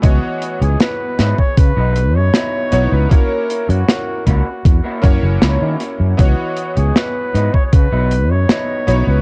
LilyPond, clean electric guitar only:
\new Staff \with { instrumentName = "Clean electric guitar" } { \time 4/4 \key cis \minor \tempo 4 = 78 r4. <b dis' e' fis'>16 r8 <b dis' e' fis'>16 r8 <b dis' e' fis'>8 r8 | r4. <ais cis' e' fis'>16 r8 <ais cis' e' fis'>16 r8 <ais cis' e' fis'>8 r8 | r4. <b dis' e' fis'>16 r8 <b dis' e' fis'>16 r8 <b dis' e' fis'>8 r8 | }